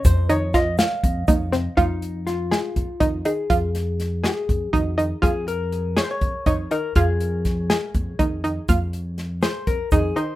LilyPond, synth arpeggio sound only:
\new Staff \with { instrumentName = "Synth arpeggio sound" } { \time 7/8 \key f \minor \tempo 4 = 122 r8 ees'8 f'4 r8 ees'8 c'8 | f'4 r8 aes'4 ees'8 ees'8 | f'4 r8 aes'4 ees'8 ees'8 | f'4 r8 aes'4 ees'8 ees'8 |
f'4 r8 aes'4 ees'8 ees'8 | f'4 r8 aes'4 ees'8 ees'8 | }